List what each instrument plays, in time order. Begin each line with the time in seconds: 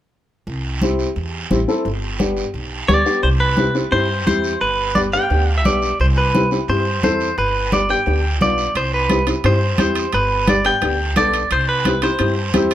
0.47 upright bass C2, high conga, long guiro
0.82 upright piano C4 E4 G4, high conga, short guiro
0.99 short guiro
1.16 upright bass E2, high conga, long guiro
1.51 upright bass A1, upright piano C4 E4 G4, high conga, short guiro
1.68 upright piano C4 E4 A4, short guiro
1.85 upright bass G1, high conga, long guiro
2.19 upright piano B3 D4 G4, high conga, short guiro
2.36 short guiro
2.54 upright bass B1, high conga, long guiro
2.88 upright bass D2, upright piano B3 D4 G4, clean electric guitar D5, high conga, short guiro
3.06 upright piano B3 D4 G4, short guiro
3.23 upright bass C2, clean electric guitar C5, high conga, long guiro
3.40 clean electric guitar B4
3.57 upright piano C4 E4 G4, high conga, short guiro
3.75 upright piano C4 E4 G4, short guiro
3.91 upright bass G2, upright piano C4 E4 G4, clean electric guitar C5, high conga, long guiro
4.26 upright bass E2, upright piano C4 E4 G4, clean electric guitar C5, high conga, short guiro
4.44 short guiro
4.61 upright bass G1, clean electric guitar B4, high conga, long guiro
4.95 upright piano B3 D4 G4, clean electric guitar D5, high conga, short guiro
5.13 upright piano B3 D4 G4, clean electric guitar G5, short guiro
5.30 upright bass D2, upright piano B3 D4 G4, high conga, long guiro
5.58 clean electric guitar E5
5.64 upright bass B1, upright piano B3 D4 G4, clean electric guitar D5, high conga, short guiro
5.82 short guiro
6.00 upright bass C2, clean electric guitar C5, high conga, long guiro
6.18 clean electric guitar B4
6.34 upright piano C4 E4 G4, high conga, short guiro
6.51 upright piano C4 E4 G4, short guiro
6.68 upright bass G2, upright piano C4 E4 G4, clean electric guitar C5, high conga, long guiro
7.03 upright bass E2, upright piano C4 E4 A4, clean electric guitar C5, high conga, short guiro
7.20 short guiro
7.38 upright bass G1, clean electric guitar B4, high conga, long guiro
7.72 upright piano B3 D4 G4, clean electric guitar D5, high conga, short guiro
7.89 upright piano B3 D4 G4, clean electric guitar G5, short guiro
8.06 upright bass D2, upright piano B3 D4 G4, high conga, long guiro
8.41 upright bass B1, upright piano B3 D4 F4, clean electric guitar D5, high conga, short guiro
8.58 short guiro
8.75 upright bass C2, clean electric guitar C5, high conga, high timbale, long guiro
8.94 clean electric guitar B4
9.10 upright piano C4 E4 G4, high conga, high timbale, short guiro
9.27 upright piano C4 E4 G4, high timbale, short guiro
9.44 upright bass G2, upright piano C4 E4 G4, clean electric guitar C5, high conga, high timbale, long guiro
9.78 upright bass E2, upright piano C4 E4 G4, clean electric guitar C5, high conga, high timbale, short guiro
9.95 high timbale, short guiro
10.13 upright bass G1, clean electric guitar B4, high conga, high timbale, long guiro
10.47 upright piano B3 D4 G4, clean electric guitar D5, high conga, high timbale, short guiro
10.64 upright piano B3 D4 G4, clean electric guitar G5, high timbale, short guiro
10.81 upright bass D2, upright piano B3 D4 G4, high conga, high timbale, long guiro
11.16 upright bass B1, upright piano B3 D4 A4, clean electric guitar D5, high conga, high timbale, short guiro
11.33 high timbale, short guiro
11.50 upright bass C2, clean electric guitar C5, high conga, high timbale, long guiro
11.69 clean electric guitar B4
11.85 upright piano C4 E4 G4, high conga, high timbale, short guiro
12.02 upright piano C4 E4 G4, clean electric guitar C5, high timbale, short guiro
12.19 upright bass G2, upright piano C4 E4 G4, high conga, high timbale, long guiro
12.54 upright bass E2, upright piano C4 E4 G4, high conga, high timbale, short guiro
12.71 high timbale, short guiro